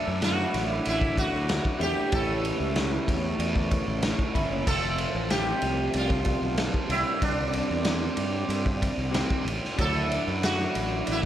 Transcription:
Already playing: clean electric guitar D3 F#3 A3 D4 E4, harmonium E4 D5 F#5, sitar A4
0.07 fingered electric bass F#2
0.22 sitar F#4, snare, ride
0.54 fingered electric bass A1, snare, ride
0.73 sitar E4
0.85 fingered electric bass A1, sitar E4, ride
1.01 kick
1.17 sitar F#4, kick, ride
1.34 fingered electric bass D2
1.49 snare, ride
1.65 kick
1.79 fingered electric bass E2, clean electric guitar D3 F#3 A3 D4 E4, sitar G4, ride
2.11 fingered electric bass A1, clean electric guitar A2 E3 A3 C#4 E4, sitar A4, harmonium C#5 A5, kick, ride
2.45 ride
2.60 fingered electric bass C#2
2.76 snare, ride
3.08 fingered electric bass E2, kick, ride
3.39 fingered electric bass E2, ride
3.56 kick
3.71 kick, ride
3.86 fingered electric bass A1
4.02 snare, ride
4.19 kick
4.34 fingered electric bass G1, clean electric guitar A2 E3 A3 C#4 E4, kick, ride
4.50 fingered electric bass F#1
4.66 fingered electric bass F1, clean electric guitar F2 C3 F3 A3 C4 F4, harmonium F4 C5, sitar A4, kick, crash
4.98 ride
5.15 fingered electric bass A1
5.30 sitar G4, snare, ride
5.62 fingered electric bass C2, ride
5.93 fingered electric bass C2, sitar F4, ride
6.10 kick
6.25 kick, ride
6.42 fingered electric bass B1
6.57 snare, ride
6.74 kick
6.89 fingered electric bass C2, clean electric guitar C3 G3 C4 D4 G4, sitar E4, harmonium G4 D5 C6, ride
7.22 fingered electric bass C2, sitar D4, kick, ride
7.53 ride
7.70 fingered electric bass E2
7.85 snare, ride
8.17 fingered electric bass G2, ride
8.49 fingered electric bass G2, ride
8.66 kick
8.82 kick, ride
8.98 fingered electric bass C2
9.11 clean electric guitar C3 G3 C4 D4 G4, snare, ride
9.30 kick
9.45 fingered electric bass A1, ride
9.64 snare
9.76 fingered electric bass D2, clean electric guitar D3 F#3 A3 D4 E4, harmonium E4 F#5, kick, ride
9.81 sitar A4
10.12 ride
10.27 fingered electric bass F#2
10.43 sitar F#4, snare, ride
10.75 fingered electric bass A1, ride
11.07 fingered electric bass A1, ride
11.12 sitar E4

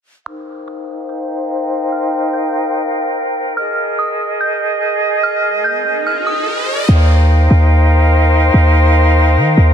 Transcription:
0.26 flute section D#4 A#4 C5 F5 G5, synth bell F6
0.68 synth bell D#6
1.09 synth bell G6
1.92 synth bell F6
2.33 synth bell G6
3.57 flute section G#4 D#5, synth bell F6
3.99 synth bell D#6
4.41 synth bell G6
5.23 synth bell F6, riser
5.64 synth bell G6
6.07 synth bell F6
6.27 synth bell D#6
6.89 808-style bass D#2, flute section D#4 A#4 C5 F5 G5
7.51 808-style bass D#2
8.54 808-style bass D#2
9.37 808-style bass D#3
9.58 808-style bass D#2

